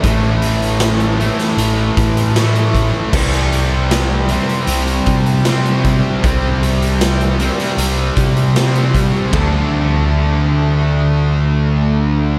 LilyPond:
<<
  \new Staff \with { instrumentName = "Distorted electric guitar" } { \clef bass \time 4/4 \key c \lydian \tempo 4 = 77 <a, e a>4. <a, e a>4. <a, e a>4 | <c g c'>4. <c g c'>4. <c g c'>4 | <c g c'>4. <c g c'>4. <c g c'>4 | <d a d'>1 | }
  \new Staff \with { instrumentName = "Picked electric bass" } { \clef bass \time 4/4 \key c \lydian a,,2 a,,8 a,4. | c,2 c,8 c4. | c,2 c,8 c4. | d,1 | }
  \new DrumStaff \with { instrumentName = "Drums" } \drummode { \time 4/4 <hh bd>8 hh16 hh16 <hh sn>16 hh16 hh16 <hh sn>16 hh8 <hh bd>16 hh16 <hh sn>16 hh16 <hh bd>8 | <cymc bd>16 hh16 hh8 <hh sn>8 hh16 hh16 hh16 hh16 <hh bd>16 hh16 <hh sn>16 hh16 <hh bd>8 | <hh bd>8 hh16 hh16 <hh sn>16 hh16 hh16 <hh sn>16 hh8 <hh bd>16 hh16 <hh sn>16 hh16 <hh bd>8 | <bd rb tomfh>4 r4 r4 r4 | }
>>